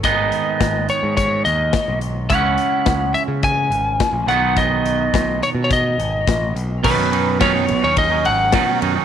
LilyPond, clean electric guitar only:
\new Staff \with { instrumentName = "Clean electric guitar" } { \time 4/4 \key b \mixolydian \tempo 4 = 106 <gis, dis gis b dis'>1 | <cis gis cis' e'>2.~ <cis gis cis' e'>8 <b, dis fis b dis'>8~ | <b, dis fis b dis'>2.~ <b, dis fis b dis'>8 r8 | <b, dis fis cis' dis'>8 <dis fis cis' dis'>8 <b, dis fis cis' dis'>16 <fis cis' dis'>8 <fis cis' dis'>8 <fis cis' dis'>8. <b, dis fis cis' dis'>16 <fis cis' dis'>16 <dis fis cis' dis'>16 <fis cis' dis'>16 | }